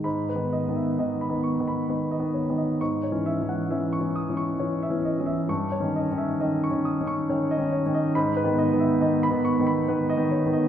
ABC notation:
X:1
M:3/4
L:1/16
Q:1/4=67
K:G#m
V:1 name="Grand piano"
b B d e d b c' b B d c d | c' c e f e c' d' c' c e d e | c' c d e d c' d' c' c d c d | b B d e d b c' b B d c d |]
V:2 name="Grand piano" clef=bass
(3G,,2 [D,B,]2 [D,B,]2 (3[D,B,]2 [D,B,]2 [D,B,]2 (3[D,B,]2 [D,B,]2 [D,B,]2 | (3G,,2 [E,C]2 [E,C]2 (3[E,C]2 [E,C]2 [E,C]2 (3[E,C]2 [E,C]2 [E,C]2 | (3=G,,2 [D,C]2 [D,C]2 (3[D,C]2 [D,C]2 [D,C]2 (3[D,C]2 [D,C]2 [D,C]2 | (3G,,2 [D,B,]2 [D,B,]2 (3[D,B,]2 [D,B,]2 [D,B,]2 (3[D,B,]2 [D,B,]2 [D,B,]2 |]